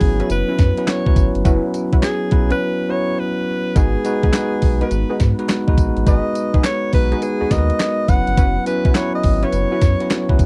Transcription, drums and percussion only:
0.01 kick medium
0.01 open hi-hat medium
0.20 closed hi-hat soft
0.30 closed hi-hat medium
0.30 tambourine medium
0.59 kick medium
0.59 snare medium
0.59 closed hi-hat medium
0.59 tambourine medium
0.77 closed hi-hat medium
0.87 snare loud
0.87 clap medium
0.87 closed hi-hat medium
0.87 tambourine medium
1.06 kick medium
1.16 kick loud
1.16 closed hi-hat medium
1.16 tambourine medium
1.35 closed hi-hat soft
1.45 kick loud
1.45 closed hi-hat medium
1.45 tambourine medium
1.74 closed hi-hat medium
1.74 tambourine medium
1.93 kick medium
1.93 closed hi-hat medium
2.03 snare loud
2.03 clap loud
2.03 closed hi-hat medium
2.03 tambourine loud
2.31 kick loud
2.31 closed hi-hat medium
2.50 closed hi-hat medium
3.76 kick loud
3.76 closed hi-hat medium
3.76 tambourine medium
4.05 closed hi-hat medium
4.05 tambourine medium
4.23 kick medium
4.23 closed hi-hat medium
4.33 snare loud
4.33 clap loud
4.33 clap medium
4.33 closed hi-hat medium
4.33 tambourine loud
4.62 kick medium
4.62 open hi-hat medium
4.81 closed hi-hat soft
4.91 closed hi-hat medium
4.91 tambourine medium
5.20 kick medium
5.20 snare medium
5.20 closed hi-hat medium
5.20 tambourine medium
5.39 closed hi-hat medium
5.49 snare loud
5.49 clap medium
5.49 closed hi-hat medium
5.49 tambourine loud
5.68 kick loud
5.78 kick loud
5.78 closed hi-hat medium
5.78 tambourine medium
5.97 closed hi-hat soft
6.07 kick loud
6.07 closed hi-hat medium
6.07 tambourine medium
6.35 closed hi-hat medium
6.35 tambourine medium
6.54 kick medium
6.54 closed hi-hat soft
6.64 snare loud
6.64 clap loud
6.64 clap medium
6.64 closed hi-hat medium
6.64 tambourine loud
6.93 kick medium
6.93 open hi-hat medium
7.12 closed hi-hat soft
7.22 closed hi-hat medium
7.22 tambourine medium
7.51 kick medium
7.51 snare medium
7.51 closed hi-hat medium
7.51 tambourine medium
7.70 closed hi-hat medium
7.79 snare loud
7.79 clap medium
7.79 clap loud
7.79 closed hi-hat medium
7.79 tambourine medium
8.08 kick loud
8.08 closed hi-hat medium
8.08 tambourine medium
8.27 closed hi-hat soft
8.37 kick loud
8.37 closed hi-hat medium
8.37 tambourine medium
8.66 closed hi-hat medium
8.66 tambourine medium
8.85 kick loud
8.85 closed hi-hat medium
8.95 snare loud
8.95 clap loud
8.95 clap medium
8.95 closed hi-hat medium
8.95 tambourine loud
9.23 kick medium
9.23 open hi-hat medium
9.43 closed hi-hat medium
9.53 closed hi-hat medium
9.53 tambourine medium
9.81 kick medium
9.81 snare medium
9.81 closed hi-hat medium
9.81 tambourine medium
10.00 closed hi-hat medium
10.10 snare loud
10.10 clap medium
10.10 closed hi-hat medium
10.10 tambourine medium
10.29 kick medium
10.39 kick loud
10.39 closed hi-hat medium
10.39 tambourine medium

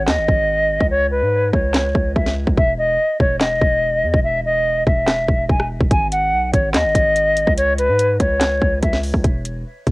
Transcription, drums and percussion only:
0.07 snare loud
0.07 clap medium
0.28 kick loud
0.80 kick medium
1.53 kick medium
1.74 snare loud
1.74 clap medium
1.95 kick loud
2.16 kick medium
2.26 snare medium
2.47 kick loud
2.58 kick loud
3.20 kick medium
3.41 snare loud
3.41 clap medium
3.62 kick loud
4.14 kick medium
4.87 kick loud
5.08 cross-stick medium
5.08 snare loud
5.08 clap medium
5.28 kick loud
5.49 kick medium
5.60 cross-stick loud
5.80 kick loud
5.91 kick loud
5.91 closed hi-hat medium
6.12 closed hi-hat medium
6.53 kick loud
6.53 closed hi-hat medium
6.74 snare loud
6.74 clap loud
6.74 closed hi-hat medium
6.95 kick loud
6.95 closed hi-hat medium
7.16 closed hi-hat medium
7.37 closed hi-hat medium
7.47 kick medium
7.58 closed hi-hat medium
7.78 closed hi-hat medium
7.99 closed hi-hat loud
8.20 kick loud
8.20 closed hi-hat medium
8.41 snare loud
8.41 clap medium
8.41 closed hi-hat medium
8.62 kick loud
8.83 kick medium
8.83 closed hi-hat medium
8.93 snare medium
9.03 open hi-hat medium
9.14 kick medium
9.24 kick loud
9.24 closed hi-hat medium
9.45 closed hi-hat medium
9.87 kick medium
9.87 closed hi-hat medium

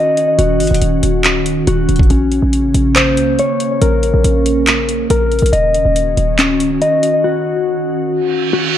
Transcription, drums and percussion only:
0.17 closed hi-hat medium
0.39 closed hi-hat medium
0.60 closed hi-hat medium
0.60 open hi-hat medium
0.67 closed hi-hat medium
0.74 closed hi-hat medium
0.82 closed hi-hat medium
1.03 closed hi-hat medium
1.24 clap loud
1.24 closed hi-hat medium
1.46 closed hi-hat medium
1.67 closed hi-hat medium
1.89 closed hi-hat medium
1.96 kick medium
1.96 closed hi-hat medium
2.03 closed hi-hat soft
2.10 closed hi-hat medium
2.32 closed hi-hat medium
2.53 closed hi-hat medium
2.74 closed hi-hat medium
2.96 clap loud
2.96 closed hi-hat medium
3.17 closed hi-hat medium
3.39 closed hi-hat medium
3.60 closed hi-hat medium
3.82 closed hi-hat medium
4.03 closed hi-hat medium
4.24 closed hi-hat medium
4.46 closed hi-hat medium
4.67 clap loud
4.67 closed hi-hat medium
4.89 closed hi-hat medium
5.10 closed hi-hat medium
5.32 closed hi-hat soft
5.39 closed hi-hat medium
5.46 closed hi-hat medium
5.53 closed hi-hat medium
5.74 closed hi-hat medium
5.96 closed hi-hat medium
6.17 closed hi-hat medium
6.39 clap loud
6.39 closed hi-hat medium
6.60 closed hi-hat medium
6.82 closed hi-hat medium
7.03 closed hi-hat medium

